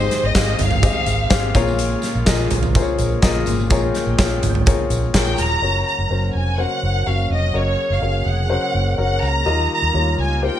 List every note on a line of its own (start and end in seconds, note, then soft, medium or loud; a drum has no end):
0.00 0.55 G#2 medium
0.00 1.52 D#3 medium
0.00 1.51 G#3 medium
0.00 1.52 C4 medium
0.00 0.36 G4 medium
0.00 0.36 G#4 medium
0.00 0.24 C5 loud
0.00 0.36 C5 medium
0.00 0.83 D#5 medium
0.00 0.36 F5 medium
0.00 1.52 G5 medium
0.00 tambourine soft
0.11 snare soft
0.11 closed hi-hat medium
0.11 tambourine soft
0.23 0.33 G#1 medium
0.23 0.60 D#5 medium
0.35 0.55 G#1 medium
0.35 0.72 G4 medium
0.35 0.72 G#4 medium
0.35 0.72 C5 medium
0.35 0.72 F5 medium
0.35 kick loud
0.35 snare loud
0.35 closed hi-hat medium
0.35 tambourine medium
0.48 tambourine soft
0.59 0.88 G1 medium
0.59 1.55 F5 medium
0.59 closed hi-hat medium
0.59 floor tom medium
0.59 tambourine soft
0.71 floor tom medium
0.71 tambourine soft
0.83 1.19 G4 medium
0.83 1.20 G#4 medium
0.83 1.20 C5 medium
0.83 1.20 D#5 medium
0.83 kick loud
0.83 closed hi-hat medium
0.83 tambourine medium
1.06 1.26 G#1 loud
1.06 closed hi-hat medium
1.06 tambourine medium
1.30 1.50 G#1 medium
1.30 1.54 G4 medium
1.30 1.54 G#4 medium
1.30 1.55 C5 medium
1.30 1.55 F5 loud
1.30 kick loud
1.30 snare medium
1.30 closed hi-hat medium
1.30 tambourine medium
1.55 1.94 A#1 medium
1.55 2.23 A#2 medium
1.55 5.58 C#3 medium
1.55 5.58 G#3 medium
1.55 5.58 A#3 medium
1.55 2.12 F4 loud
1.55 3.45 F4 medium
1.55 2.12 G#4 medium
1.55 2.13 A#4 medium
1.55 2.12 C#5 loud
1.55 kick loud
1.55 closed hi-hat medium
1.55 tambourine soft
1.68 tambourine soft
1.79 closed hi-hat medium
1.79 tambourine medium
2.02 snare soft
2.02 closed hi-hat medium
2.02 tambourine soft
2.15 2.25 A#1 medium
2.26 2.63 F4 medium
2.26 2.63 G#4 medium
2.26 2.64 A#4 medium
2.26 2.64 D#5 medium
2.26 kick medium
2.26 snare medium
2.26 closed hi-hat medium
2.26 tambourine medium
2.40 tambourine soft
2.50 2.80 A#1 medium
2.50 closed hi-hat medium
2.50 floor tom medium
2.50 tambourine soft
2.63 floor tom medium
2.63 tambourine soft
2.75 3.12 F4 medium
2.75 3.12 G#4 medium
2.75 3.12 A#4 medium
2.75 2.81 C5 medium
2.75 kick loud
2.75 closed hi-hat medium
2.75 tambourine soft
2.82 3.15 C#5 medium
2.98 3.18 A#1 loud
2.98 closed hi-hat medium
2.98 tambourine soft
3.22 3.42 A#1 medium
3.22 3.59 F4 medium
3.22 3.59 G#4 medium
3.22 3.59 A#4 medium
3.22 3.59 D#5 loud
3.22 kick loud
3.22 snare loud
3.22 closed hi-hat medium
3.22 tambourine medium
3.46 3.66 G#1 medium
3.46 4.15 A#2 medium
3.46 5.60 G5 medium
3.46 closed hi-hat medium
3.46 tambourine medium
3.60 tambourine soft
3.70 3.90 A#1 loud
3.70 4.07 F4 medium
3.70 4.08 G#4 medium
3.70 4.08 A#4 medium
3.70 4.08 C#5 loud
3.70 kick loud
3.70 closed hi-hat medium
3.70 tambourine soft
3.94 snare soft
3.94 closed hi-hat medium
3.94 tambourine soft
4.06 4.16 A#1 medium
4.18 4.38 A#1 medium
4.18 4.55 F4 medium
4.18 4.55 G#4 medium
4.18 4.55 A#4 medium
4.18 4.55 C#5 medium
4.18 kick loud
4.18 snare medium
4.18 closed hi-hat medium
4.18 tambourine medium
4.42 4.72 G#1 medium
4.42 closed hi-hat medium
4.42 floor tom medium
4.42 tambourine soft
4.55 floor tom medium
4.66 5.03 F4 medium
4.66 5.03 G#4 medium
4.66 5.03 A#4 medium
4.66 5.03 C#5 medium
4.66 kick loud
4.66 closed hi-hat medium
4.66 tambourine medium
4.90 5.10 A#1 medium
4.90 closed hi-hat medium
4.90 tambourine soft
5.14 5.34 A#1 medium
5.14 5.51 F4 medium
5.14 5.51 G#4 medium
5.14 5.51 A#4 medium
5.14 5.51 C#5 medium
5.14 5.37 G5 medium
5.14 kick medium
5.14 snare loud
5.14 closed hi-hat medium
5.14 tambourine medium
5.37 5.58 D#1 medium
5.37 5.86 A#5 loud
5.37 closed hi-hat medium
5.37 tambourine soft
5.61 5.81 F#1 medium
5.61 9.43 C#3 medium
5.61 9.43 F#3 medium
5.61 10.60 A#3 medium
5.61 5.99 C#4 medium
5.61 5.99 F#4 medium
5.61 7.53 F#4 medium
5.61 5.99 A#4 medium
5.61 5.99 C#5 medium
5.87 6.31 A#5 medium
5.98 6.08 F#1 medium
6.10 6.30 F#1 medium
6.10 6.47 C#4 medium
6.10 6.47 F#4 soft
6.10 6.47 A#4 soft
6.10 6.47 C5 medium
6.35 6.64 F1 medium
6.35 6.57 G#5 medium
6.58 6.95 C#4 medium
6.58 6.95 F#4 medium
6.58 6.95 A#4 medium
6.58 6.95 C5 medium
6.58 7.07 F#5 medium
6.83 7.02 F#1 medium
7.06 7.26 F#1 medium
7.06 7.43 C#4 medium
7.06 7.43 F#4 medium
7.06 7.43 A#4 soft
7.06 7.43 C#5 medium
7.06 7.31 F5 medium
7.30 7.50 F1 medium
7.30 7.54 D#5 medium
7.54 7.74 F#1 medium
7.54 7.91 C#4 medium
7.54 7.91 F#4 medium
7.54 9.44 G#4 medium
7.54 7.91 A#4 medium
7.54 7.91 C#5 medium
7.54 7.91 D#5 medium
7.90 8.00 F#1 medium
7.90 8.28 F5 medium
8.02 8.22 F#1 medium
8.02 8.39 C#4 medium
8.02 8.39 F#4 soft
8.02 8.39 A#4 soft
8.02 8.39 C#5 medium
8.26 8.55 F1 medium
8.26 8.98 F#5 medium
8.49 8.86 C#4 medium
8.49 8.86 F#4 medium
8.49 8.86 A#4 medium
8.49 8.87 C5 medium
8.74 8.94 F#1 medium
8.98 9.18 F#1 medium
8.98 9.35 C#4 medium
8.98 9.35 F#4 medium
8.98 9.35 A#4 medium
8.98 9.35 C#5 medium
8.98 9.21 F#5 medium
9.22 9.42 C#2 medium
9.22 9.71 A#5 medium
9.46 9.66 D#2 medium
9.46 10.14 D#3 medium
9.46 10.60 D#3 medium
9.46 10.60 G3 medium
9.46 9.83 F4 medium
9.46 10.60 F4 medium
9.46 9.83 G4 medium
9.46 9.83 A#4 medium
9.46 9.83 D#5 medium
9.73 10.16 A#5 medium
9.82 9.92 D#2 medium
9.94 10.14 D#2 medium
9.94 10.31 F4 medium
9.94 10.31 G4 soft
9.94 10.31 A#4 soft
9.94 10.31 C#5 medium
10.18 10.48 C#2 medium
10.18 10.44 G#5 medium
10.42 10.60 F4 medium
10.42 10.60 G4 medium
10.42 10.60 A#4 medium
10.42 10.60 C5 medium
10.42 10.60 G5 medium